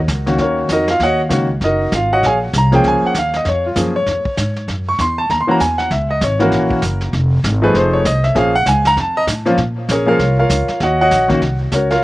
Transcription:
0.08 C#2, kick, snare, hi-hat pedal
0.26 D#3 A#3 C#4 F#4, snare
0.38 D#2 C#4 F#4 A#4 C#5, brush sweep, kick, snare
0.69 F2 D#4 F#4 D#5, kick, snare, hi-hat pedal
0.73 A#4
0.88 F4 F5, snare
1.00 D#2 D#5 F#5, brush sweep, kick, snare
1.04 F#4 C#5
1.29 C#2 D#3 A#3 C#4 F#4, kick, snare, hi-hat pedal
1.61 F#1 D#4 F#4 A#4 D#5, brush sweep, kick, snare
1.92 G#1 F4 F5, kick, snare, hi-hat pedal
2.13 F#4 C#5 D#5 F#5
2.23 A#1 C#5 F5 G#5, brush sweep, kick, snare
2.27 G#4
2.53 C2, kick, snare, hi-hat pedal
2.58 A#5
2.72 F3 A#3 C#4 G#4 G5, snare
2.84 C#2 G#5, brush sweep, kick, snare
3.02 muted upright bass stroke
3.06 F#5
3.14 D#2, kick, snare, hi-hat pedal
3.19 F5
3.34 D#5, snare
3.45 F2 C#5, brush sweep, kick, snare
3.66 F4
3.76 F#2 F3 A#3 C#4 G#4, kick, snare, hi-hat pedal
3.96 C#5
4.06 F2, brush sweep, kick, snare
4.25 muted upright bass stroke, kick
4.37 G#2, kick, snare, hi-hat pedal
4.56 snare
4.68 F#2, brush sweep, kick, snare
4.89 C#6
4.99 E2 C6, kick, snare, hi-hat pedal
5.18 A5
5.29 D#2 A#5, brush sweep, kick, snare
5.41 C6
5.47 E3 A#3 C#4 F#4 A#5, muted upright bass stroke
5.60 E2 G#5, kick, snare, hi-hat pedal
5.78 F#5, snare
5.91 C#2 E5, brush sweep, kick, snare
6.11 D#5
6.21 G#1 C#5, kick, snare, hi-hat pedal
6.39 E3 A#3 C#4 F#4 A#4, snare
6.52 A#1, brush sweep, kick, snare
6.71 kick
6.82 F#1, kick, snare, hi-hat pedal
7.01 snare
7.13 F1, brush sweep, kick, snare
7.44 G#1, kick, snare, hi-hat pedal
7.62 F3 A3 D#4 G#4 B4
7.74 F1 C5, brush sweep, kick, snare
7.93 C#5
8.05 C2 D#5, kick, snare, hi-hat pedal
8.24 E5, snare
8.35 A#1 F3 A#3 C#4 G#4 F5, brush sweep, kick, snare
8.55 F#5
8.66 C#2 G#5, kick, snare, hi-hat pedal
8.85 A#5, snare
8.96 F2, brush sweep, kick, snare
9.00 A5
9.17 D#5
9.27 A2, kick, snare, hi-hat pedal
9.45 F3 A#3 C#4 F4, snare
9.58 A#2, brush sweep, kick, snare
9.88 A#1 C#4 G#4 A#4 C#5, kick, snare, hi-hat pedal
10.06 F3 A#3 C#4 F4 G#4 A#4 C#5 F5
10.19 C2, brush sweep, kick, snare
10.39 F4 A#4 C#5 F5
10.50 C#2, kick, snare, hi-hat pedal
10.68 muted upright bass stroke, snare
10.80 D#2 F#4 C#5 D#5 F#5, brush sweep, kick, snare
11.01 F#4 C#5 D#5 F#5
11.11 A#1, kick, snare, hi-hat pedal
11.28 D#3 A#3 C#4 F#4, kick, snare
11.42 C2, brush sweep, kick, snare
11.72 C#2 C#4 F#4 A#4 C#5, kick, snare, hi-hat pedal
11.91 F4 A#4 C#5 F5, snare

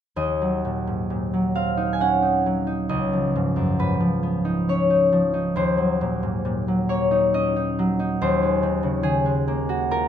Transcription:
0.16 D#2 D#5
0.42 F#3
0.65 A#2
0.87 G#2
1.10 A#2
1.34 F#3
1.55 C4 F5
1.77 D#4
1.93 G#5
2.00 C#4 F#5
2.22 D#4
2.46 F#3
2.67 D#4
2.89 C#2 D#5
3.13 F3
3.36 G#2
3.56 F#2
3.79 G#2 B4
4.00 F3
4.23 B3
4.45 D#4
4.68 C#4 C#5
4.90 D#4
5.12 F3
5.34 D#4
5.56 D#2 C5
5.78 F#3
6.01 A#2
6.23 G#2
6.45 A#2
6.68 F#3
6.89 A#3 C#5
7.11 D#4
7.34 C#4 D#5
7.56 D#4
7.79 F#3
7.99 D#4
8.21 D#2 C5
8.43 G#3
8.63 D#3
8.83 C#3
9.03 D#3 G#4
9.26 G#3
9.48 A#3
9.69 F#4
9.91 F4 A#4

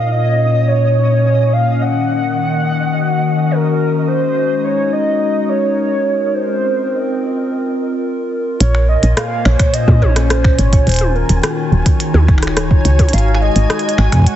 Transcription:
Already playing: A#2 A#3 C#4 A#4 C#5 D#5 F5
0.11 D#5
0.68 C#5
1.53 F5
1.81 D#3 F#5
2.83 C#4 F#4
3.51 A#4
4.08 G#3 C5
4.23 D#4
4.59 A#4
4.64 C#5
4.92 D#5
5.49 C#5
6.34 C4 C5
6.49 F4
8.60 A#1 A#2 C#5 G#5, closed hi-hat
8.75 A#3, finger snap
8.89 D#5
9.03 A#1, closed hi-hat
9.14 C5 F5, cross-stick, closed hi-hat
9.45 A#1 C#5, finger snap
9.53 C#4
9.60 finger snap, kick, closed hi-hat
9.74 D#5, closed hi-hat
9.88 A#2, kick, high tom
10.02 A#1 C#5, high tom
10.16 finger snap, cross-stick, closed hi-hat
10.30 C5, cross-stick, closed hi-hat
10.44 finger snap, kick
10.59 G#1 C#5, closed hi-hat
10.73 kick, closed hi-hat
10.87 D#1 D#3 C5, closed hi-hat
10.89 closed hi-hat
10.92 closed hi-hat
10.94 closed hi-hat
10.96 closed hi-hat
10.99 closed hi-hat, high tom
11.06 F#4
11.15 A#4
11.24 D#4 C#5
11.29 D#1, closed hi-hat
11.43 cross-stick, closed hi-hat
11.72 D#1
11.86 kick, closed hi-hat
12.00 closed hi-hat
12.14 D#2, high tom
12.28 D#1, finger snap, kick
12.38 finger snap
12.43 cross-stick, closed hi-hat
12.47 finger snap
12.57 C#5, cross-stick, closed hi-hat
12.71 kick
12.85 C#2, closed hi-hat
12.99 kick, closed hi-hat, high tom
13.09 closed hi-hat
13.13 G#1 G#3 F5, closed hi-hat
13.18 closed hi-hat
13.35 finger snap
13.42 D#5
13.56 G#1, closed hi-hat
13.70 cross-stick, closed hi-hat
13.79 closed hi-hat
13.89 closed hi-hat
13.96 G#1 A#4 G#5, finger snap
14.12 finger snap, kick, closed hi-hat
14.15 kick
14.17 kick
14.19 kick
14.22 kick
14.24 F#5, kick, closed hi-hat

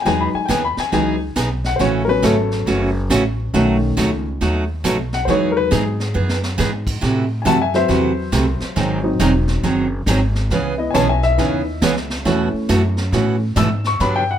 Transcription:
0.02 E2 E3 F#3 G#3 B3 G5, brush sweep, snare
0.06 D#4 G#4 G#5
0.21 B5
0.34 G#5, muted upright bass stroke
0.45 D#2 E3 B3 D#4 G5, snare, hi-hat pedal
0.50 G#4 G#5
0.65 B5
0.77 G#5, muted upright bass stroke, snare
0.92 C#2 E3 F#3 G#3 B3 D#4 G#4 G#5, brush sweep, snare
1.36 B1 E3 B3 D#4 G#4, snare, hi-hat pedal
1.64 F#5, snare
1.76 A1 C#3 E3 A3 C#4 C5, brush sweep, snare
1.80 F#4 C#5
2.05 F#3 B3 C#4 A#4
2.09 B4
2.22 G#1 C#3 E3 A3 C#4 F#4 A4, snare, hi-hat pedal
2.51 snare
2.66 F#1 C#3 E3 A3 C#4 F#4, brush sweep, snare
3.10 A1 C#3 E3 A3 C#4 F#4, snare, hi-hat pedal
3.54 B1 B2 D#3 F#3 A3 C#4 D#4 F#4, brush sweep, snare
3.97 C#2 B2 F#3 A3 D#4 F#4, snare, hi-hat pedal
4.41 D#2 B2 F#3 A3 D#4 F#4, brush sweep, snare
4.84 B1 B2 F#3 A3 D#4 F#4, snare, hi-hat pedal
5.13 F#5, snare
5.25 E2 E3 F#3 G#3 B3 D#4 G#4 C5, brush sweep, snare
5.30 D#4 C#5
5.52 A#4
5.57 B4
5.71 G#2 E3 B3 D#4 G#4, snare, hi-hat pedal
6.00 snare
6.14 F#2 E3 B3 D#4 G#4
6.29 snare
6.44 snare
6.58 G#2 E3 B3 D#4 G#4, snare, hi-hat pedal
6.87 kick, crash
7.01 A2 C3 E3 A3 E4 F#4, brush sweep, snare
7.42 F#2 C3 E3 A3 E4 F#5 G#5
7.46 F#4 A5, snare, hi-hat pedal
7.61 E5 G#5
7.74 F#3 C4 B4 C5 E5, snare
7.88 E2 C3 E3 A3 E4 F#4, brush sweep, snare
8.32 C2 C3 E3 A3 E4 F#4, snare, hi-hat pedal
8.60 muted upright bass stroke, snare
8.76 G#1 D#3 F#3 C4 D#4 G#4, brush sweep, snare
9.03 F#3 C4 D#4
9.19 E1 D#3 F#3 C4 D#4 G#4, snare, hi-hat pedal
9.48 snare
9.63 F#1 D#3 F#3 C4 D#4 G#4, brush sweep, snare
10.06 G#1 D#3 F#3 C4 D#4 G#4, snare, hi-hat pedal
10.35 snare
10.50 C#2 C#3 E3 B3 C#4 G#4, brush sweep, snare
10.78 B3 E4 D#5
10.91 B1 C#5 G#5, snare, hi-hat pedal
10.95 C#3 E3 B3 C#4 G#4 A5
11.09 E5 G#5
11.23 E5, snare
11.37 D#2 C#3 E3 B3 C#4 D#4 G#4, brush sweep, snare
11.82 C#2 C#3 E3 B3 C#4 G#4, snare, hi-hat pedal
11.96 snare
12.10 snare
12.25 E2 B2 E3 A3 C#4 E4 F#4, brush sweep, snare
12.54 muted upright bass stroke
12.69 F#2 B2 E3 A3 E4 F#4, snare, hi-hat pedal
12.97 snare
13.12 A2 B2 E3 A3 C#4 E4 F#4, brush sweep, snare
13.56 G#2 B2 E3 A3 E4 F#4 E6, snare, hi-hat pedal
13.84 C#6, snare
14.00 G2 D3 F#3 B3 D4 G4 B5, brush sweep, snare
14.16 G5
14.31 F#5

